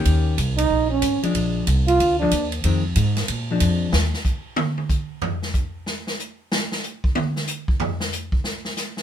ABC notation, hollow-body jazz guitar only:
X:1
M:4/4
L:1/8
Q:"Swing" 1/4=186
K:Bbmix
V:1 name="Hollow-body jazz guitar" clef=bass
[E,B,_DG]2 z4 z [F,A,=D]- | [F,A,D]2 z3 [F,A,D] z2 | [E,A,C] z4 [F,A,D]3 | z8 |
z8 | z8 | z8 |]